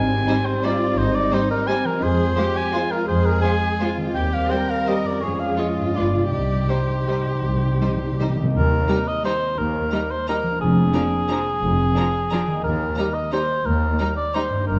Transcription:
Already playing: G#1 G#2 G3 C4 D#4 C5 G#5
0.27 G3 D#4 C5
0.46 C5
0.63 G3 D#4 F4 C5 D5
0.98 G#1 D#4 C5
1.15 D5
1.32 G3 D#4 C5
1.51 A#4
1.67 G3 C4 D#4 C5 G#5
1.84 F3 A#4
1.89 G#3
1.93 F4
1.98 C5
2.02 F2 G#3 C4 G#4 C5
2.37 G#3 F4 G4 C5
2.56 G#5
2.73 G#3 F4 C5
2.91 A#4
3.08 F2 G#4 C5
3.26 A#4
3.42 G#3 F4 C5 G#5
3.80 G#3 F4 C5
3.97 D#3
4.01 C4
4.06 G4
4.10 C4 C5
4.14 D#2 G3 G4 G5
4.34 F5
4.49 G3 G4 A#4 C5 G5
4.70 F5
4.86 G3 G4 C5 D#5
5.04 F2 D5
5.09 C#4
5.14 F4
5.18 G#4
5.22 F2 G#3 C#4 G#4 C#5
5.40 F5
5.57 G#3 F4 C#5 D#5
5.77 G2
5.81 B3
5.86 F4
5.90 G#4
5.95 G1 G#3 F4 B4 D5
6.14 C3
6.18 C4
6.23 D#4
6.27 C2 D#4 G4
6.32 C3 G3 G4 D5
6.40 C3
6.47 C3
6.55 C3
6.68 G3 D#4 C5
6.89 C3
6.96 C3
7.07 G3 D#4 C5
7.12 C3
7.18 C3
7.26 C3
7.34 C3
7.42 C2 C3
7.49 C3
7.56 C3
7.64 C3
7.80 C3 G3 D#4 C5
7.88 C3
7.96 C3
8.04 C3
8.12 C3
8.19 C3 G3 D#4 C5
8.28 C3
8.36 C3 D#3
8.41 C3 A#3
8.45 D#4
8.50 D#2 G4
8.54 D#2 A#4
8.88 G3 D#4 A#5
9.08 D#5
9.24 G3 D#4 C5 A#5
9.58 D#2 A#4
9.92 G3 D#4 A#5
10.11 C5
10.27 G3 D#4 A#4 A#5
10.43 F3
10.47 A#3
10.52 D4
10.56 F4
10.61 F1 F2 G#4
10.94 F3 D4 A#5
11.29 F3 D4 A#5
11.61 F1 F2
11.95 F3 D4 A#5
12.31 F3 D4 A#5
12.47 D#3
12.51 A#3
12.56 D#4
12.60 D#2 G4 A#4
12.64 D#2
12.97 G3 D#4 A#5
13.14 D#5
13.32 G3 D#4 C5 A#5
13.65 D#2 A#4
13.99 G3 D#4 A#5
14.17 D5
14.34 G3 D#4 C5 A#5
14.50 G2
14.54 A#3
14.59 D#4
14.63 G4
14.67 G1 G2 A#4

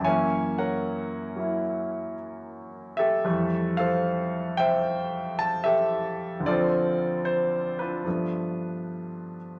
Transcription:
Already playing: F#2
0.01 E3 C#5 E5 G#5
0.06 A#3 C#4
0.58 A#4 C#5 F#5
1.36 F#3 A#3 E4
2.97 G4 A4 E5
3.24 F2 E3 G3 A3
3.77 A4 C5 F5
4.57 C5 E5 G5
5.39 A5
5.64 G4 A4 E5
6.40 D2 D3
6.46 F3 F4 A4 D5
6.51 C4
7.25 C5
7.79 D4 F4 B4
8.04 G2 F3 A3
8.09 B3

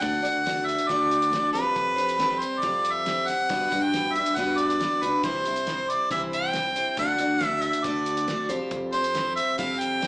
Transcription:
0.00 D2 D3 A3 D4 F#4 D5 F#5, kick, closed hi-hat
0.22 D2 D4 F#4 D5, closed hi-hat
0.45 A3 D4 F#4 D5, snare, closed hi-hat
0.65 E5, closed hi-hat
0.78 closed hi-hat
0.88 D2 D3 A3 D4 F#4 D5, kick, closed hi-hat
1.11 closed hi-hat
1.22 closed hi-hat
1.30 A3 D4 F#4 D5, snare, closed hi-hat
1.53 F2 F3 G3 C4 G4 B4, closed hi-hat
1.76 F2, kick, closed hi-hat
1.96 C4 G4 C5, closed hi-hat
2.09 closed hi-hat
2.18 G3 C4 G4 C5, snare, closed hi-hat
2.39 C5, closed hi-hat
2.59 F3 G3 C4 G4 C5 D5, kick
2.63 F2, closed hi-hat
2.85 closed hi-hat
2.92 E5
3.06 G3 C4 G4 C5, snare, closed hi-hat
3.28 F#5, snare, closed hi-hat
3.49 G2 G3 B3 D4 F#4 B4, kick, closed hi-hat
3.72 G2 D4 F#4 B4, kick, closed hi-hat
3.83 G5
3.94 B3 D4 F#4 B4, snare, closed hi-hat
4.13 F#4 B4 E5, closed hi-hat
4.18 D4
4.26 closed hi-hat
4.36 G2 G3 B3 D4 F#4 B4 F#5, kick, closed hi-hat
4.58 D5, closed hi-hat
4.70 closed hi-hat
4.79 B3 D4 F#4 B4, snare, closed hi-hat
5.02 C#2 D4 F#4 B4, closed hi-hat
5.23 C2 C3 E3 G3 C4 E4 C5, kick, closed hi-hat
5.45 G3 C4 E4 C5, closed hi-hat
5.56 closed hi-hat
5.67 G3 C4 E4 C5, snare, closed hi-hat
5.90 D5, closed hi-hat
6.10 C2 C3 E3 G3 C4 E4 C5 E5, kick, closed hi-hat
6.33 G5, closed hi-hat
6.53 G3 C4 E4 C5, snare, closed hi-hat
6.76 G3 C4 E4 C5, closed hi-hat
6.97 D2 D3 A3 D4 F#4 D5 F#5, kick, closed hi-hat
7.18 D2 D4 F#4 D5, closed hi-hat
7.40 A3 D4 F#4 D5, snare, closed hi-hat
7.45 E5
7.62 E5, closed hi-hat
7.73 closed hi-hat
7.84 D2 D3 A3 D4 F#4 D5, kick, closed hi-hat
8.06 closed hi-hat
8.17 closed hi-hat
8.28 A3 D4 F#4 D5, snare, closed hi-hat
8.49 F2 F3 G3 C4 G4 C5, closed hi-hat
8.71 F2, kick, closed hi-hat
8.93 C4 G4 C5, closed hi-hat
9.04 closed hi-hat
9.14 G3 C4 G4 C5, snare, closed hi-hat
9.36 E5, closed hi-hat
9.58 F2 F3 G3 C4 G4 C5 F5, kick, closed hi-hat
9.79 G5, closed hi-hat
10.01 G3 C4 G4 C5, snare, closed hi-hat

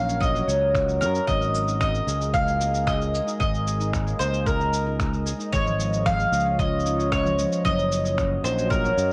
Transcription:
Already playing: A#1 F#3 D#4 F#4 A#4 D#5 F5
0.08 C#4, shaker
0.20 A#3 D#5, kick, shaker
0.34 F#3, shaker
0.48 C#2 C#5, shaker
0.75 A#3, finger snap, kick, shaker
0.88 F#3, shaker
1.01 F#2 A#4, shaker
1.14 C#4, shaker
1.27 G#1 G#3 D#5, kick, shaker
1.40 D#5, shaker
1.55 shaker
1.60 G#4
1.67 D#4, shaker
1.81 D#5, finger snap, kick, shaker
1.94 shaker
2.07 C#2 G#4, shaker
2.20 D#4, shaker
2.34 A#3 F5, kick, shaker
2.47 G#3, shaker
2.60 A#3, shaker
2.74 shaker
2.87 G#3 D#5, finger snap, kick, shaker
3.00 D#5, shaker
3.15 shaker
3.27 D#4, shaker
3.40 G#1 D#5, kick, shaker
3.54 shaker
3.66 G#4, shaker
3.80 D#4, shaker
3.93 A#3, finger snap, kick, shaker
4.07 G#3, shaker
4.19 C#2 A#3 C5, shaker
4.34 shaker
4.46 G#3 A#4, kick, shaker
4.60 D#5, shaker
4.73 shaker
4.86 D#4
5.00 finger snap, kick, shaker
5.13 shaker
5.26 G#4, shaker
5.39 D#4, shaker
5.52 G#1 G#3 F4 C#5, kick, shaker
5.65 F3, shaker
5.79 G#3 C#5, shaker
5.93 shaker
6.05 F3 F5, finger snap, kick, shaker
6.18 G#4, shaker
6.32 C#2, shaker
6.40 shaker
6.45 C#4
6.59 D#5, kick, shaker
6.80 shaker
6.85 D#4, shaker
6.98 C#4, shaker
7.11 G#3 C#5, finger snap, kick, shaker
7.25 F3, shaker
7.38 G#3, shaker
7.52 shaker
7.64 F#1 F#3 D#5, kick, shaker
7.78 F#4 A#4, shaker
7.92 shaker
8.04 C#4, shaker
8.18 finger snap, kick, shaker
8.40 A#1 D#4 A#4 C5
8.45 shaker
8.58 C#4, shaker
8.70 A#3 A#4, kick, shaker
8.84 F#3, shaker
8.97 F#2 A#3, shaker

